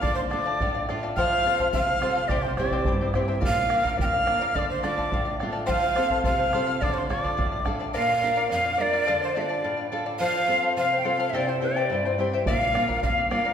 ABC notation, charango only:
X:1
M:2/4
L:1/16
Q:1/4=106
K:Dm
V:1 name="Charango"
[Adf] [df] [Adf] [Adf] [Adf] [df] [Adf] [Adf] | [Acf] [cf] [Acf] [Acf] [Acf] [cf] [Acf] [Acf] | [EGceg] [Ecg] [Eceg] [EGceg] [Eceg] [Ecg] [Eceg] [EGceg] | [Bdf] [df] [Bdf] [Bdf] [Bdf] [df] [Bdf] [Bdf] |
[Adf] [df] [Adf] [Adf] [Adf] [df] [Adf] [Adf] | [Acf] c [Acf] [Acf] [Acf] [cf] [Acf] [Acf] | [Adf] [df] [Adf] [Adf] [Adf] [df] [Adf] [Adf] | [Bdf] [df] [Bdf] [Bdf] [Bdf] [df] [Bdf] [Bdf] |
[Adf] [df] [Adf] [Adf] [Adf] [df] [Adf] [Adf] | [Acf] [cf] [Acf] [Acf] [Acf] [cf] [Acf] [Acf] | [EGceg] [Ecg] [Eceg] [EGceg] [Eceg] [Ecg] [Eceg] [EGceg] | [Bdf] [df] [Bdf] [Bdf] [Bdf] [df] [Bdf] [Bdf] |]